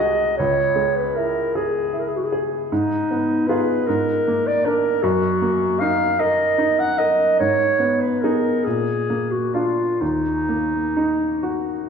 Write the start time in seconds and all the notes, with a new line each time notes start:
Already playing: C2 G#3
0.00 F#4 G#4 D#5
0.37 C#2 C#5
0.76 G#3
0.96 B4
1.15 E4 A#4
1.55 G#4
1.93 E4
1.99 A#4
2.08 G#4
2.17 F#4
2.24 G#4
2.32 G#4
2.71 G#2 D#4
3.11 B3
3.47 F4 G#4 B4
3.87 G#2 A#4
4.27 A#3
4.47 D5
4.64 D4 A#4
5.03 F#2 F#4
5.42 A#3
5.79 D#4 F5
6.19 A#4 D#5
6.58 D#4
6.79 F#5
6.98 A#4 D#5
7.39 G#2 C#5
7.79 B3
8.01 B4
8.21 D#4 G#4 A#4
8.64 A#2 G#4
9.10 A#3
9.31 F#4
9.54 D4 F4
10.01 D#2 D#4
10.49 A#3
10.97 D#4
11.43 F#4